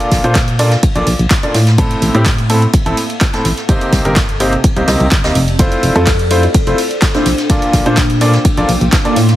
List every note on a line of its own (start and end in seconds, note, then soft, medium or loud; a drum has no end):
0.00 0.21 A#2 medium
0.00 0.21 A#3 medium
0.00 1.78 A#3 medium
0.00 0.21 D4 medium
0.00 0.21 F4 medium
0.00 0.21 A4 medium
0.00 0.50 A4 medium
0.00 0.50 C5 medium
0.00 0.21 D5 medium
0.00 0.45 G5 medium
0.00 closed hi-hat soft
0.11 0.19 A#1 loud
0.11 kick medium
0.11 snare soft
0.11 open hi-hat loud
0.11 ride medium
0.23 0.34 A#2 medium
0.23 0.76 A#2 loud
0.23 0.34 A#3 medium
0.23 0.34 D4 medium
0.23 0.34 F4 medium
0.23 0.34 A4 medium
0.23 0.34 C5 loud
0.23 1.78 F5 medium
0.23 closed hi-hat soft
0.35 kick loud
0.35 snare loud
0.35 clap loud
0.35 closed hi-hat medium
0.35 ride medium
0.48 closed hi-hat soft
0.59 0.70 A#2 medium
0.59 0.70 A#3 medium
0.59 0.70 D4 medium
0.59 0.70 F4 medium
0.59 0.70 A4 medium
0.59 0.70 D5 medium
0.59 2.55 C6 medium
0.59 open hi-hat medium
0.59 ride medium
0.71 snare soft
0.71 closed hi-hat soft
0.83 kick loud
0.83 closed hi-hat medium
0.83 ride medium
0.95 1.03 A#1 medium
0.95 1.05 A#2 medium
0.95 1.05 A#3 medium
0.95 1.05 D4 medium
0.95 1.05 F4 medium
0.95 1.05 A4 medium
0.95 1.05 D5 medium
0.95 closed hi-hat soft
1.06 1.15 A#1 loud
1.06 open hi-hat loud
1.06 ride medium
1.19 1.26 A#1 medium
1.19 closed hi-hat soft
1.31 kick loud
1.31 snare loud
1.31 clap loud
1.31 closed hi-hat medium
1.31 ride medium
1.43 1.53 A#2 medium
1.43 1.53 A#3 medium
1.43 1.53 D4 medium
1.43 1.53 F4 medium
1.43 1.53 A4 medium
1.43 1.53 D5 medium
1.43 closed hi-hat soft
1.54 1.95 A2 medium
1.54 snare soft
1.54 open hi-hat medium
1.54 ride medium
1.66 snare soft
1.66 closed hi-hat soft
1.78 2.12 A2 medium
1.78 2.12 C4 medium
1.78 2.12 E4 medium
1.78 2.12 A4 medium
1.78 4.45 A4 medium
1.78 kick loud
1.78 closed hi-hat medium
1.78 ride medium
1.91 closed hi-hat soft
1.97 3.69 E5 medium
2.02 2.10 A1 loud
2.02 open hi-hat loud
2.02 ride medium
2.15 2.24 A2 medium
2.15 2.67 A2 loud
2.15 2.24 C4 medium
2.15 2.24 E4 medium
2.15 2.24 G4 loud
2.15 closed hi-hat soft
2.25 kick loud
2.25 snare loud
2.25 clap loud
2.25 closed hi-hat medium
2.25 open hi-hat medium
2.38 4.45 A5 medium
2.38 closed hi-hat soft
2.50 2.60 A2 medium
2.50 2.60 C4 medium
2.50 2.60 E4 medium
2.50 2.60 A4 loud
2.50 open hi-hat loud
2.50 ride medium
2.62 closed hi-hat soft
2.74 kick loud
2.74 closed hi-hat medium
2.74 ride medium
2.86 2.93 A1 medium
2.86 2.96 A2 medium
2.86 2.96 C4 medium
2.86 2.96 E4 medium
2.86 2.96 A4 medium
2.86 closed hi-hat soft
2.97 open hi-hat loud
2.97 ride medium
3.10 closed hi-hat soft
3.21 kick loud
3.21 snare loud
3.21 clap loud
3.21 closed hi-hat medium
3.33 3.43 A2 medium
3.33 3.43 C4 medium
3.33 3.43 E4 medium
3.33 3.43 A4 medium
3.33 snare soft
3.33 closed hi-hat soft
3.45 3.53 A1 medium
3.45 snare medium
3.45 open hi-hat medium
3.45 ride medium
3.57 snare soft
3.57 closed hi-hat soft
3.69 4.02 C3 medium
3.69 4.02 A#3 medium
3.69 6.20 C4 medium
3.69 4.02 C4 medium
3.69 4.02 D#4 medium
3.69 4.02 G4 medium
3.69 4.02 C5 medium
3.69 kick loud
3.69 closed hi-hat medium
3.69 ride medium
3.81 closed hi-hat soft
3.92 4.00 C2 loud
3.92 kick medium
3.92 snare soft
3.92 open hi-hat loud
3.92 ride medium
4.05 4.57 G1 loud
4.05 4.15 C3 medium
4.05 4.15 A#3 medium
4.05 4.15 C4 medium
4.05 4.15 D#4 medium
4.05 4.15 G4 medium
4.05 4.15 A#4 loud
4.05 closed hi-hat soft
4.16 kick loud
4.16 snare loud
4.16 clap loud
4.16 closed hi-hat medium
4.16 ride medium
4.24 6.26 G4 medium
4.29 closed hi-hat soft
4.35 6.26 D5 loud
4.40 4.51 C3 medium
4.40 4.51 A#3 medium
4.40 4.51 C4 medium
4.40 4.51 D#4 medium
4.40 4.51 G4 medium
4.40 4.51 C5 loud
4.40 open hi-hat loud
4.53 closed hi-hat soft
4.64 kick loud
4.64 closed hi-hat medium
4.64 ride medium
4.76 4.83 C2 medium
4.76 4.86 C3 medium
4.76 4.86 A#3 medium
4.76 4.86 C4 medium
4.76 4.86 D#4 medium
4.76 4.86 G4 medium
4.76 4.86 C5 medium
4.76 closed hi-hat soft
4.88 4.96 C2 medium
4.88 5.05 C3 medium
4.88 5.05 A#3 medium
4.88 5.05 C4 medium
4.88 5.05 D#4 medium
4.88 5.05 G4 medium
4.88 5.05 D#5 medium
4.88 snare medium
4.88 open hi-hat loud
4.88 open hi-hat medium
5.00 5.07 C2 medium
5.00 closed hi-hat soft
5.12 5.26 G1 medium
5.12 kick loud
5.12 clap loud
5.12 closed hi-hat medium
5.24 5.31 D#2 medium
5.24 5.34 C3 medium
5.24 5.34 A#3 medium
5.24 5.34 C4 medium
5.24 5.34 D#4 medium
5.24 5.34 G4 medium
5.24 5.34 D#5 medium
5.24 snare medium
5.24 closed hi-hat soft
5.24 open hi-hat medium
5.35 5.76 F1 loud
5.35 open hi-hat medium
5.48 closed hi-hat soft
5.48 ride medium
5.59 5.93 A3 medium
5.59 5.93 C4 medium
5.59 5.93 E4 medium
5.59 5.93 F4 medium
5.59 8.12 A4 medium
5.59 5.93 C5 medium
5.59 kick loud
5.59 closed hi-hat medium
5.59 ride medium
5.72 8.12 C5 medium
5.72 closed hi-hat soft
5.83 5.91 F1 loud
5.83 open hi-hat loud
5.83 ride medium
5.96 6.48 F2 loud
5.96 6.05 A3 medium
5.96 6.05 C4 medium
5.96 6.05 E4 medium
5.96 6.05 F4 medium
5.96 6.05 A4 loud
5.96 6.03 A4 medium
5.96 closed hi-hat soft
6.06 6.15 A4 medium
6.06 kick loud
6.06 snare loud
6.06 clap loud
6.06 closed hi-hat medium
6.06 open hi-hat medium
6.19 closed hi-hat soft
6.24 8.12 G5 medium
6.30 6.41 A3 medium
6.30 6.41 C4 medium
6.30 6.41 E4 medium
6.30 6.41 F4 medium
6.30 6.41 C5 medium
6.30 open hi-hat medium
6.30 ride medium
6.43 6.64 F4 medium
6.43 closed hi-hat soft
6.54 kick loud
6.54 closed hi-hat medium
6.54 ride medium
6.67 6.74 F1 medium
6.67 6.77 A3 medium
6.67 6.77 C4 medium
6.67 6.77 E4 medium
6.67 6.77 F4 medium
6.67 6.77 C5 medium
6.67 closed hi-hat soft
6.78 open hi-hat loud
6.78 ride medium
6.91 closed hi-hat soft
7.02 kick loud
7.02 snare loud
7.02 clap loud
7.02 closed hi-hat medium
7.02 ride medium
7.14 7.24 A#2 medium
7.14 7.24 A3 medium
7.14 7.24 C4 medium
7.14 7.31 D4 medium
7.14 7.24 E4 medium
7.14 7.24 F4 medium
7.14 7.24 C5 medium
7.14 snare soft
7.14 closed hi-hat soft
7.25 7.34 A#1 medium
7.25 9.36 A#3 medium
7.25 snare medium
7.25 open hi-hat medium
7.25 ride medium
7.38 snare soft
7.38 closed hi-hat soft
7.49 7.83 A#2 medium
7.49 7.83 A#3 medium
7.49 7.83 D4 medium
7.49 7.83 F4 medium
7.49 7.83 A4 medium
7.49 7.83 D5 medium
7.49 9.36 F5 medium
7.49 kick loud
7.49 closed hi-hat medium
7.49 ride medium
7.62 closed hi-hat soft
7.73 7.81 A#1 loud
7.73 kick medium
7.73 snare soft
7.73 open hi-hat loud
7.73 ride medium
7.86 7.96 A#2 medium
7.86 8.38 A#2 loud
7.86 7.96 A#3 medium
7.86 7.93 D4 medium
7.86 7.96 D4 medium
7.86 7.96 F4 medium
7.86 7.96 A4 medium
7.86 7.96 C5 loud
7.86 closed hi-hat soft
7.97 kick loud
7.97 snare loud
7.97 clap loud
7.97 closed hi-hat medium
7.97 ride medium
8.10 closed hi-hat soft
8.21 8.32 A#2 medium
8.21 8.32 A#3 medium
8.21 8.32 D4 medium
8.21 8.32 F4 medium
8.21 8.32 A4 medium
8.21 8.32 D5 loud
8.21 9.36 C6 medium
8.21 open hi-hat medium
8.21 ride medium
8.34 snare medium
8.34 closed hi-hat soft
8.45 kick loud
8.45 closed hi-hat medium
8.45 ride medium
8.57 8.64 A#1 medium
8.57 8.67 A#2 medium
8.57 8.67 A#3 medium
8.57 8.67 D4 medium
8.57 8.67 F4 medium
8.57 8.67 A4 medium
8.57 8.67 D5 medium
8.57 closed hi-hat soft
8.69 8.76 A#1 loud
8.69 open hi-hat loud
8.69 ride medium
8.81 8.88 A#1 medium
8.81 closed hi-hat soft
8.93 kick loud
8.93 snare loud
8.93 clap loud
8.93 closed hi-hat medium
8.93 ride medium
9.05 9.15 A#2 medium
9.05 9.15 A#3 medium
9.05 9.15 D4 medium
9.05 9.15 F4 medium
9.05 9.15 A4 medium
9.05 9.15 D5 medium
9.05 closed hi-hat soft
9.16 9.36 A2 medium
9.16 snare soft
9.16 open hi-hat medium
9.16 ride medium
9.29 snare soft
9.29 closed hi-hat soft